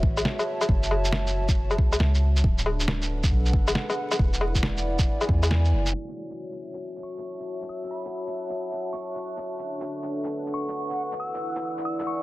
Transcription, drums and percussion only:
0.03 kick
0.17 low woodblock, shaker
0.25 snare
0.39 low woodblock, shaker
0.61 low woodblock, shaker
0.69 kick
0.83 shaker
0.91 low woodblock
1.05 shaker
1.13 snare
1.27 shaker
1.49 kick, shaker
1.71 low woodblock, shaker
1.78 kick
1.92 low woodblock, shaker
2.00 snare
2.15 shaker
2.36 shaker
2.44 kick
2.58 shaker
2.66 low woodblock
2.80 shaker
2.88 snare
3.02 shaker
3.24 kick, shaker
3.46 shaker
3.53 kick
3.68 low woodblock, shaker
3.75 snare
3.90 low woodblock, shaker
4.11 low woodblock, shaker
4.19 kick
4.33 shaker
4.41 low woodblock
4.55 kick, shaker
4.63 snare
4.77 shaker
4.99 kick, shaker
5.21 low woodblock, shaker
5.29 kick
5.43 low woodblock, shaker
5.51 snare
5.65 shaker
5.86 shaker
6.08 shaker
6.30 shaker
6.52 shaker
6.74 shaker
6.96 shaker
7.18 shaker
7.40 shaker
7.61 shaker
7.84 shaker
8.05 shaker
8.27 shaker
8.49 shaker
8.71 shaker
8.93 shaker
9.15 shaker
9.37 shaker
9.59 shaker
9.81 shaker
10.03 shaker
10.24 shaker
10.47 shaker
10.68 shaker
10.90 shaker
11.12 shaker
11.34 shaker
11.56 shaker
11.78 shaker
11.99 shaker

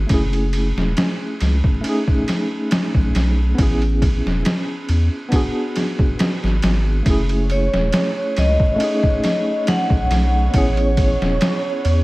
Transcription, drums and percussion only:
0.09 kick, ride
0.33 ride
0.53 ride
0.78 snare
0.97 snare, ride
1.41 snare, ride
1.64 kick
1.84 ride
2.08 kick
2.28 snare, ride
2.71 snare, ride
2.95 kick
3.15 snare, ride
3.58 kick, ride
3.82 ride
4.02 kick, ride
4.27 snare
4.45 snare, ride
4.89 ride
5.32 kick, ride
5.76 snare, ride
5.99 kick
6.19 snare, ride
6.44 snare
6.62 snare, ride
7.06 kick, ride
7.29 ride
7.50 ride
7.73 snare
7.92 snare, ride
8.37 snare, ride
8.60 kick
8.80 ride
9.03 kick
9.24 snare, ride
9.67 snare, ride
9.90 kick
10.11 snare, ride
10.54 kick, ride
10.77 ride
10.97 kick, ride
11.22 snare
11.41 snare, ride
11.85 ride

